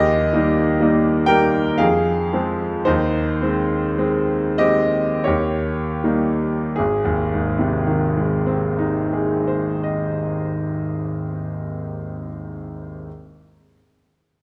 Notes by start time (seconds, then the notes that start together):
Already playing: D#2 G4 D#5
0.33 G3 A#3 D#4
0.81 G3 A#3 D#4
1.26 G3 A#3 D#4 A#4 G5
1.78 F2 G#4 F5
2.33 F3 G#3 C4
2.85 D#2 D#4 C5
3.42 G#3 C4
3.98 G#3 C4
4.58 G#3 C4 G4 D#5
5.24 D#2 G4 C#5
6.04 G3 A#3 D#4
6.76 G#1 G#4
7.05 D#2
7.33 G#2
7.59 C3
7.86 D#3
8.17 G#3
8.46 C4
8.79 D#4
9.13 G#4
9.48 C5
9.83 D#5